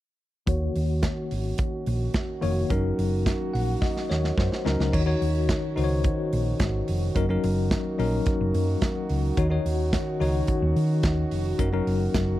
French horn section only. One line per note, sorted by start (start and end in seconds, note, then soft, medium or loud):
0.48 4.90 D#3 medium
0.48 2.69 C#4 medium
0.48 4.90 F#4 medium
2.71 4.91 A#3 medium
4.93 12.40 D#3 medium
4.93 7.13 C#4 medium
4.93 12.40 F#4 medium
7.16 9.36 A#3 medium
9.38 11.57 C#4 medium
11.59 12.40 A#3 medium